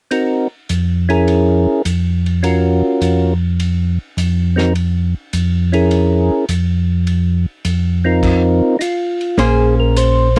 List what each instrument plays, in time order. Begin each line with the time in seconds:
0.11 tonewheel organ C4 D#4 F#4 A#4, ride
0.69 tonewheel organ F2, hi-hat pedal, ride
1.09 tonewheel organ C#4 E4 G#4 A#4, ride
1.28 ride
1.85 tonewheel organ F2, hi-hat pedal, ride
2.26 ride
2.43 tonewheel organ C#4 F4 F#4 A#4, ride
3.01 tonewheel organ F2, hi-hat pedal, ride
3.60 ride
4.17 tonewheel organ F2, hi-hat pedal, ride
4.56 tonewheel organ C4 D#4 F#4 A#4, snare
4.75 ride
5.33 tonewheel organ F2, hi-hat pedal, ride
5.72 tonewheel organ C#4 E4 G#4 A#4, ride
5.91 ride
6.49 tonewheel organ F2, hi-hat pedal, ride
7.07 ride
7.65 tonewheel organ F2, hi-hat pedal, ride
8.04 tonewheel organ C4 D#4 F4 A#4
8.23 kick, crash, ride
8.79 tonewheel organ D#4 F4, hi-hat pedal, ride
9.21 ride
9.38 tonewheel organ A#1 G#4, hollow-body jazz guitar A#3 C#4 G#4 C5, ride
9.80 tonewheel organ A#4
9.96 tonewheel organ C5, hi-hat pedal, ride
10.36 ride